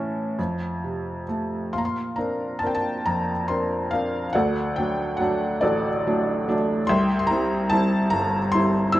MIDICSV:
0, 0, Header, 1, 2, 480
1, 0, Start_track
1, 0, Key_signature, -2, "major"
1, 0, Tempo, 887574
1, 934, Time_signature, 6, 3, 24, 8
1, 1885, Tempo, 855920
1, 3325, Tempo, 826446
1, 5036, End_track
2, 0, Start_track
2, 0, Title_t, "Felt piano"
2, 0, Program_c, 0, 0
2, 0, Control_c, 0, 64, 127
2, 0, Note_on_c, 0, 45, 55
2, 0, Note_on_c, 0, 52, 37
2, 0, Note_on_c, 0, 61, 45
2, 0, Note_on_c, 0, 76, 53
2, 0, Note_on_c, 0, 81, 55
2, 0, Note_on_c, 0, 85, 72
2, 188, Note_off_c, 0, 45, 0
2, 195, Note_off_c, 0, 52, 0
2, 203, Note_off_c, 0, 61, 0
2, 210, Note_on_c, 0, 41, 50
2, 214, Control_c, 0, 64, 0
2, 303, Control_c, 0, 64, 127
2, 454, Note_on_c, 0, 48, 37
2, 666, Note_off_c, 0, 85, 0
2, 675, Note_off_c, 0, 76, 0
2, 677, Note_off_c, 0, 81, 0
2, 696, Note_on_c, 0, 57, 38
2, 913, Note_off_c, 0, 41, 0
2, 921, Note_off_c, 0, 48, 0
2, 928, Note_off_c, 0, 57, 0
2, 934, Note_on_c, 0, 77, 46
2, 935, Note_on_c, 0, 46, 46
2, 935, Note_on_c, 0, 84, 58
2, 942, Control_c, 0, 64, 0
2, 963, Note_on_c, 0, 82, 56
2, 975, Note_off_c, 0, 84, 0
2, 1001, Note_on_c, 0, 84, 62
2, 1007, Note_off_c, 0, 82, 0
2, 1047, Control_c, 0, 64, 127
2, 1168, Note_on_c, 0, 82, 51
2, 1174, Note_off_c, 0, 84, 0
2, 1178, Note_on_c, 0, 60, 29
2, 1180, Note_on_c, 0, 62, 25
2, 1183, Note_on_c, 0, 70, 35
2, 1393, Note_off_c, 0, 82, 0
2, 1401, Note_on_c, 0, 81, 66
2, 1410, Note_off_c, 0, 60, 0
2, 1414, Note_off_c, 0, 62, 0
2, 1416, Note_off_c, 0, 70, 0
2, 1418, Note_on_c, 0, 60, 37
2, 1422, Note_on_c, 0, 62, 33
2, 1424, Note_on_c, 0, 70, 42
2, 1442, Note_on_c, 0, 79, 52
2, 1446, Note_off_c, 0, 81, 0
2, 1485, Note_off_c, 0, 79, 0
2, 1485, Note_on_c, 0, 81, 64
2, 1629, Note_off_c, 0, 77, 0
2, 1653, Note_off_c, 0, 81, 0
2, 1653, Note_on_c, 0, 82, 70
2, 1657, Note_on_c, 0, 41, 50
2, 1794, Note_off_c, 0, 60, 0
2, 1797, Note_off_c, 0, 62, 0
2, 1798, Note_off_c, 0, 70, 0
2, 1882, Note_on_c, 0, 84, 66
2, 1886, Note_on_c, 0, 60, 37
2, 1891, Note_on_c, 0, 62, 32
2, 1892, Note_on_c, 0, 70, 44
2, 1894, Note_off_c, 0, 82, 0
2, 2108, Note_off_c, 0, 84, 0
2, 2121, Note_on_c, 0, 77, 71
2, 2122, Note_off_c, 0, 60, 0
2, 2126, Note_off_c, 0, 62, 0
2, 2126, Note_off_c, 0, 70, 0
2, 2130, Note_on_c, 0, 60, 39
2, 2134, Note_on_c, 0, 62, 37
2, 2134, Note_on_c, 0, 70, 43
2, 2320, Note_off_c, 0, 60, 0
2, 2322, Note_off_c, 0, 62, 0
2, 2322, Note_off_c, 0, 70, 0
2, 2343, Note_off_c, 0, 46, 0
2, 2347, Note_off_c, 0, 41, 0
2, 2357, Note_on_c, 0, 78, 70
2, 2367, Note_on_c, 0, 74, 53
2, 2370, Note_off_c, 0, 77, 0
2, 2372, Control_c, 0, 64, 0
2, 2372, Note_on_c, 0, 38, 60
2, 2372, Note_on_c, 0, 69, 49
2, 2471, Control_c, 0, 64, 127
2, 2582, Note_off_c, 0, 78, 0
2, 2600, Note_on_c, 0, 79, 64
2, 2612, Note_on_c, 0, 54, 39
2, 2612, Note_on_c, 0, 57, 30
2, 2613, Note_on_c, 0, 62, 42
2, 2828, Note_on_c, 0, 78, 70
2, 2835, Note_off_c, 0, 54, 0
2, 2835, Note_off_c, 0, 57, 0
2, 2842, Note_off_c, 0, 62, 0
2, 2843, Note_on_c, 0, 54, 45
2, 2844, Note_on_c, 0, 57, 40
2, 2849, Note_off_c, 0, 79, 0
2, 2851, Note_on_c, 0, 62, 49
2, 3064, Note_off_c, 0, 74, 0
2, 3067, Note_off_c, 0, 69, 0
2, 3075, Note_on_c, 0, 74, 73
2, 3084, Note_on_c, 0, 33, 60
2, 3084, Note_on_c, 0, 66, 59
2, 3085, Note_on_c, 0, 69, 54
2, 3086, Note_off_c, 0, 78, 0
2, 3230, Note_off_c, 0, 54, 0
2, 3230, Note_off_c, 0, 57, 0
2, 3234, Note_off_c, 0, 62, 0
2, 3334, Note_on_c, 0, 54, 45
2, 3335, Note_on_c, 0, 57, 43
2, 3338, Note_on_c, 0, 62, 50
2, 3564, Note_off_c, 0, 54, 0
2, 3565, Note_off_c, 0, 57, 0
2, 3569, Note_off_c, 0, 62, 0
2, 3573, Note_on_c, 0, 54, 47
2, 3574, Note_on_c, 0, 57, 43
2, 3578, Note_on_c, 0, 62, 57
2, 3603, Note_off_c, 0, 74, 0
2, 3764, Note_off_c, 0, 54, 0
2, 3764, Note_off_c, 0, 57, 0
2, 3767, Note_off_c, 0, 62, 0
2, 3786, Note_off_c, 0, 66, 0
2, 3787, Note_off_c, 0, 69, 0
2, 3788, Note_off_c, 0, 33, 0
2, 3791, Note_off_c, 0, 38, 0
2, 3799, Note_on_c, 0, 84, 90
2, 3812, Note_on_c, 0, 76, 61
2, 3812, Note_on_c, 0, 79, 61
2, 3813, Note_on_c, 0, 36, 72
2, 3817, Control_c, 0, 64, 0
2, 3913, Control_c, 0, 64, 127
2, 3978, Note_off_c, 0, 84, 0
2, 3986, Note_on_c, 0, 84, 67
2, 4031, Note_on_c, 0, 82, 84
2, 4036, Note_off_c, 0, 84, 0
2, 4051, Note_on_c, 0, 55, 45
2, 4053, Note_on_c, 0, 60, 43
2, 4056, Note_on_c, 0, 64, 47
2, 4279, Note_on_c, 0, 81, 95
2, 4281, Note_off_c, 0, 55, 0
2, 4286, Note_off_c, 0, 60, 0
2, 4286, Note_off_c, 0, 64, 0
2, 4286, Note_off_c, 0, 82, 0
2, 4290, Note_on_c, 0, 55, 52
2, 4294, Note_on_c, 0, 60, 47
2, 4295, Note_on_c, 0, 64, 59
2, 4505, Note_off_c, 0, 76, 0
2, 4505, Note_off_c, 0, 79, 0
2, 4515, Note_on_c, 0, 82, 92
2, 4530, Note_on_c, 0, 31, 68
2, 4531, Note_off_c, 0, 81, 0
2, 4673, Note_off_c, 0, 55, 0
2, 4676, Note_off_c, 0, 60, 0
2, 4677, Note_off_c, 0, 64, 0
2, 4755, Note_on_c, 0, 84, 105
2, 4766, Note_on_c, 0, 55, 48
2, 4769, Note_off_c, 0, 82, 0
2, 4770, Note_on_c, 0, 60, 45
2, 4772, Note_on_c, 0, 64, 58
2, 4992, Note_off_c, 0, 55, 0
2, 4992, Note_on_c, 0, 88, 104
2, 4994, Note_off_c, 0, 60, 0
2, 4995, Note_off_c, 0, 64, 0
2, 5001, Note_on_c, 0, 55, 55
2, 5002, Note_on_c, 0, 60, 47
2, 5004, Note_on_c, 0, 64, 62
2, 5009, Note_off_c, 0, 84, 0
2, 5036, Note_off_c, 0, 31, 0
2, 5036, Note_off_c, 0, 36, 0
2, 5036, Note_off_c, 0, 55, 0
2, 5036, Note_off_c, 0, 60, 0
2, 5036, Note_off_c, 0, 64, 0
2, 5036, Note_off_c, 0, 88, 0
2, 5036, End_track
0, 0, End_of_file